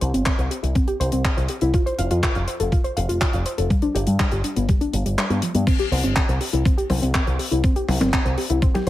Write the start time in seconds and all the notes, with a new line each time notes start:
0.01 C2 C5, closed hi-hat
0.14 G1 C4, closed hi-hat
0.26 C4, kick, clap, closed hi-hat
0.38 C2 C5, closed hi-hat
0.51 G4, closed hi-hat
0.63 C2 E4, closed hi-hat
0.75 C4, kick, closed hi-hat
0.88 G4, closed hi-hat
1.00 C2 C5, closed hi-hat
1.12 C2 C4, closed hi-hat
1.25 kick, clap, closed hi-hat
1.37 C2 C5, closed hi-hat
1.48 G4, closed hi-hat
1.61 C2 E4, closed hi-hat
1.74 F4, kick, closed hi-hat
1.86 C5, closed hi-hat
1.98 F1 F5, closed hi-hat
2.11 F2 F4, closed hi-hat
2.23 F4, kick, clap, closed hi-hat
2.35 F1 F5, closed hi-hat
2.48 C5, closed hi-hat
2.60 F1 A4, closed hi-hat
2.72 F4, kick, closed hi-hat
2.84 C5, closed hi-hat
2.97 F1 F5, closed hi-hat
3.09 F1 F4, closed hi-hat
3.21 F4, kick, clap, closed hi-hat
3.33 F1 F5, closed hi-hat
3.46 C5, closed hi-hat
3.58 F1 A4, closed hi-hat
3.70 G3, kick, closed hi-hat
3.82 D4, closed hi-hat
3.95 G1 G4, closed hi-hat
4.07 G2 G3, closed hi-hat
4.19 G3, kick, clap, closed hi-hat
4.32 G1 G4, closed hi-hat
4.44 D4, closed hi-hat
4.56 G1 B3, closed hi-hat
4.69 G3, kick, closed hi-hat
4.81 D4, closed hi-hat
4.93 G1 G3, closed hi-hat
5.05 G1 G3, closed hi-hat
5.18 G3, clap, closed hi-hat
5.30 G2 B3, closed hi-hat
5.42 F3, closed hi-hat
5.55 G2 B3, closed hi-hat
5.67 C4, kick, closed hi-hat, crash
5.79 G4, closed hi-hat
5.92 C2 C5, open hi-hat
6.03 G1 C4, closed hi-hat
6.16 C4, kick, clap, closed hi-hat
6.28 C2 C5, closed hi-hat
6.41 G4, open hi-hat
6.53 C2 E4, closed hi-hat
6.65 C4, kick, closed hi-hat
6.77 G4, closed hi-hat
6.90 C2 C5, open hi-hat, high tom
7.02 C2 C4, closed hi-hat
7.14 C4, kick, clap, closed hi-hat
7.27 C2 C5, closed hi-hat
7.39 G4, open hi-hat
7.51 C2 E4, closed hi-hat
7.64 C4, kick, closed hi-hat
7.76 G4, closed hi-hat
7.88 C2 C5, open hi-hat, high tom
8.00 G1 C4, closed hi-hat, high tom
8.13 kick, clap, closed hi-hat
8.25 C2 C5, closed hi-hat
8.38 G4, open hi-hat
8.50 C2 E4, closed hi-hat
8.62 C4, kick, closed hi-hat
8.74 G4, closed hi-hat, high tom